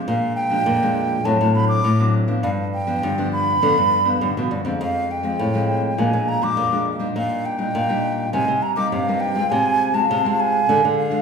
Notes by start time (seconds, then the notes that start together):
Already playing: F3 G#3 D4
0.07 A#2 F5
0.36 G5
0.50 F3 G#3 D4
0.66 F2 A#2
0.82 F3 G#3 D4
1.25 A2 F#3 C4 D4 A5
1.41 A2
1.55 F#3 C4 D4 B5
1.68 D6
1.84 A2
2.00 F#3 C4 D4
2.28 F3 B3 D4
2.43 G2 F5
2.74 G5
2.87 F3 B3 D4
3.03 G2 D3
3.18 F3 B3 D4
3.33 B5
3.61 G2 D3 F3 B3 D4
3.78 G2
4.05 F3 B3 D4
4.21 G2 D3
4.37 B2 F3 B3 D4
4.51 G2
4.65 F2 F3 G#3 C4
4.81 F2 F5
5.11 G5
5.23 F3 G#3 C4
5.39 A2 C3
5.54 F3 G#3 C4
5.98 A#2 F3 G#3 D4 G#5
6.13 A#2
6.29 A#5
6.41 F3 G#3 D4 D6
6.57 F2 A#2
6.72 F3 G#3 D4
6.99 G3 D4 D#4
7.16 A#2 F5
7.45 G5
7.58 G3 D4 D#4
7.74 A#2
7.89 G3 D4 D#4
8.33 C3 G3 A#3 D#4 G#5
8.48 C3
8.62 A#5
8.76 G3 A#3 D#4 D6
8.92 G2 C3 F5
9.08 G3 A#3 D#4
9.20 G5
9.35 G#3 C4 F4
9.50 C3 G#5
9.93 G#3 C4 F4 A5
10.10 C3
10.25 G#3 C4 F4
10.40 G#5
10.68 D3 G#3 D4 F4
10.85 D3
10.99 F5
11.11 G#3 D4 F4